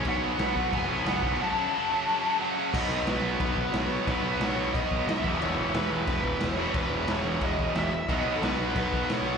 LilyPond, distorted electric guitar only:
\new Staff \with { instrumentName = "Distorted electric guitar" } { \clef bass \time 4/4 \key b \mixolydian \tempo 4 = 179 <b, fis b>8 <b, fis b>8 <b, fis b>8 <b, fis b>8 <b, fis b>8 <b, fis b>8 <b, fis b>8 <b, fis b>8 | <fis, cis fis>8 <fis, cis fis>8 <fis, cis fis>8 <fis, cis fis>8 <fis, cis fis>8 <fis, cis fis>8 <fis, cis fis>8 <fis, cis fis>8 | <b, fis b>1 | <b, fis b>2.~ <b, fis b>8 <e, b, e>8~ |
<e, b, e>2.~ <e, b, e>8 <e, b, e>8~ | <e, b, e>2.~ <e, b, e>8 r8 | <b, fis b>1 | }